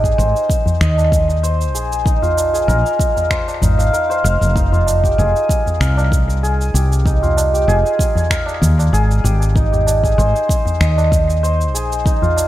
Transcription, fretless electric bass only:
0.00 0.15 G#1 medium
0.18 0.32 G#1 medium
0.81 1.74 D#2 medium
1.74 2.64 A#1 medium
2.68 2.82 A#1 medium
3.62 3.89 G#1 medium
4.24 4.39 F1 medium
4.41 5.15 F1 medium
5.18 5.32 F1 loud
5.80 6.71 C2 medium
6.74 7.64 C2 medium
7.68 7.82 F1 medium
8.62 8.89 D#2 medium
8.93 9.20 G#1 medium
9.24 10.14 G#1 medium
10.18 10.32 G#1 loud
10.80 11.74 D#2 loud
11.74 12.48 A#1 medium

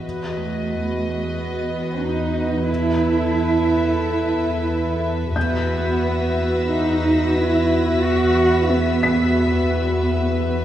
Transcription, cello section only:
0.37 1.32 A3 soft
1.36 2.02 B3 soft
2.03 2.69 D#4 medium
2.69 4.99 E4 medium
5.36 6.64 B3 medium
6.68 7.34 D#4 medium
7.36 8.02 E4 medium
8.02 8.69 F#4 medium
8.70 10.65 B3 medium

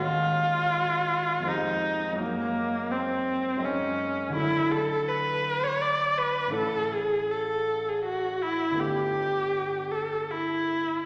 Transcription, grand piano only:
0.00 1.40 D#2 soft
0.00 1.41 G#3 soft
0.00 1.42 A#3 soft
0.00 1.43 C#4 soft
0.00 1.43 F#4 soft
1.40 2.14 F2 soft
1.40 2.13 G#3 soft
1.40 2.14 A#3 soft
1.45 2.16 C4 soft
1.45 2.17 G4 soft
2.13 3.55 F#2 soft
2.13 3.57 G#3 soft
2.13 3.58 A#3 soft
2.17 3.59 D#4 soft
2.17 3.60 F#4 soft
3.57 4.30 F#2 soft
3.57 4.31 G#3 soft
3.57 4.32 A#3 soft
3.62 4.33 D#4 soft
3.62 4.34 F#4 soft
4.30 6.48 D2 soft
4.30 6.49 F#3 soft
4.30 6.47 A3 soft
4.34 6.50 D4 soft
4.34 6.51 E4 soft
6.47 8.70 A1 soft
6.47 8.71 A3 soft
6.47 8.72 C#4 soft
6.52 8.73 E4 soft
8.71 11.04 G1 soft
8.71 11.05 A3 soft
8.71 11.06 B3 soft
8.76 11.06 D4 soft
8.76 11.06 F4 soft

